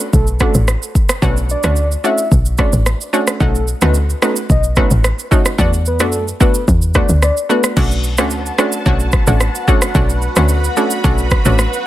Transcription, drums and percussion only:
0.00 shaker
0.13 kick, shaker
0.27 shaker
0.40 kick, cross-stick, shaker
0.54 shaker
0.68 cross-stick, shaker
0.83 shaker
0.95 kick, shaker
1.09 cross-stick, shaker
1.22 kick, shaker
1.37 shaker
1.49 shaker
1.63 cross-stick, shaker
1.76 shaker
1.92 shaker
2.04 shaker
2.18 shaker
2.32 kick, shaker
2.45 shaker
2.58 kick, cross-stick, shaker
2.73 shaker
2.86 cross-stick, shaker
3.01 shaker
3.14 shaker
3.27 cross-stick, shaker
3.41 kick, shaker
3.55 shaker
3.68 shaker
3.81 cross-stick, shaker
3.94 shaker
4.10 shaker
4.22 cross-stick, shaker
4.36 shaker
4.50 kick, shaker
4.64 shaker
4.76 kick, cross-stick, shaker
4.91 shaker
5.04 cross-stick, shaker
5.19 shaker
5.32 kick, shaker
5.46 cross-stick, shaker
5.59 kick, shaker
5.73 shaker
5.86 shaker
6.00 cross-stick, shaker
6.12 shaker
6.28 shaker
6.41 kick, shaker
6.54 shaker
6.68 kick, shaker
6.82 shaker
6.94 kick, cross-stick, shaker
7.09 shaker
7.22 cross-stick, shaker
7.37 shaker
7.50 shaker
7.64 cross-stick, shaker
7.77 kick, crash, shaker
7.91 shaker
8.04 shaker
8.18 cross-stick, shaker
8.30 shaker
8.46 shaker
8.59 cross-stick, shaker
8.72 shaker
8.86 kick, shaker
9.00 shaker
9.12 kick, cross-stick, shaker
9.27 shaker
9.40 cross-stick, shaker
9.55 shaker
9.68 kick, shaker
9.82 cross-stick, shaker
9.95 kick, shaker
10.09 shaker
10.22 shaker
10.36 cross-stick, shaker
10.49 shaker
10.64 shaker
10.77 shaker
10.91 shaker
11.04 kick, shaker
11.18 shaker
11.30 kick, cross-stick, shaker
11.45 shaker
11.59 cross-stick, shaker
11.73 shaker

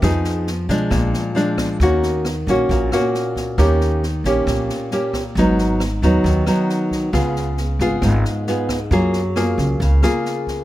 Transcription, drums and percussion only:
0.02 kick, cross-stick, snare
0.24 snare
0.47 snare
0.69 kick, snare
0.91 kick, cross-stick, snare
1.14 snare
1.36 snare
1.58 kick, cross-stick, snare
1.80 kick, snare
2.03 snare
2.25 cross-stick, snare
2.47 kick, snare
2.69 kick, snare
2.92 cross-stick, snare
3.14 snare
3.36 kick, snare
3.58 kick, cross-stick, snare
3.81 snare
4.03 snare
4.24 kick, snare
4.47 kick, cross-stick, snare
4.69 snare
4.91 snare
5.13 kick, cross-stick, snare
5.36 kick, snare
5.58 snare
5.80 cross-stick, snare
6.02 kick, snare
6.25 kick, snare
6.46 cross-stick, snare
6.69 snare
6.91 kick, snare
7.13 kick, cross-stick, snare
7.36 snare
7.57 snare
7.80 kick, snare
8.02 kick, cross-stick, snare
8.25 snare
8.47 snare
8.69 kick, cross-stick, snare
8.91 kick, snare
9.13 snare
9.36 cross-stick, snare
9.58 kick, snare
9.80 kick, snare
10.03 cross-stick, snare
10.25 snare
10.47 kick, snare

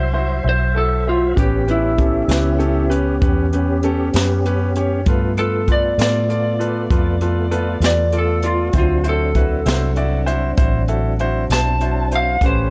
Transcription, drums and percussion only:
1.37 kick, closed hi-hat
1.68 closed hi-hat
1.98 kick, closed hi-hat
2.29 snare, closed hi-hat
2.60 closed hi-hat
2.91 closed hi-hat
3.22 kick, closed hi-hat
3.53 closed hi-hat
3.83 closed hi-hat
4.13 snare, closed hi-hat
4.45 closed hi-hat
4.75 closed hi-hat
5.06 kick, closed hi-hat
5.37 closed hi-hat
5.68 kick, closed hi-hat
5.99 snare, closed hi-hat
6.30 closed hi-hat
6.60 closed hi-hat
6.90 kick, closed hi-hat
7.21 closed hi-hat
7.52 closed hi-hat
7.81 snare, closed hi-hat
8.12 closed hi-hat
8.42 closed hi-hat
8.73 kick, closed hi-hat
9.04 closed hi-hat
9.35 kick, closed hi-hat
9.66 snare, closed hi-hat
9.96 closed hi-hat
10.27 closed hi-hat
10.57 kick, closed hi-hat
10.88 closed hi-hat
11.19 closed hi-hat
11.50 snare, closed hi-hat
11.81 closed hi-hat
12.11 closed hi-hat
12.41 kick, closed hi-hat

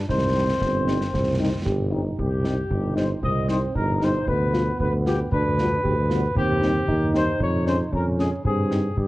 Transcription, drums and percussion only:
0.09 concert bass drum, snare
0.61 concert bass drum, snare
0.88 snare
1.01 snare
1.14 concert bass drum, snare
1.66 concert bass drum, snare
2.19 concert bass drum
2.45 snare
2.71 concert bass drum
2.97 snare
3.23 concert bass drum
3.48 snare
3.75 concert bass drum
4.01 snare
4.28 concert bass drum
4.54 snare
4.80 concert bass drum
5.06 snare
5.32 concert bass drum
5.58 snare
5.85 concert bass drum
6.10 snare
6.37 concert bass drum
6.63 snare
6.88 concert bass drum
7.15 snare
7.40 concert bass drum
7.67 snare
7.92 concert bass drum
8.19 snare
8.45 concert bass drum
8.71 snare
8.97 concert bass drum

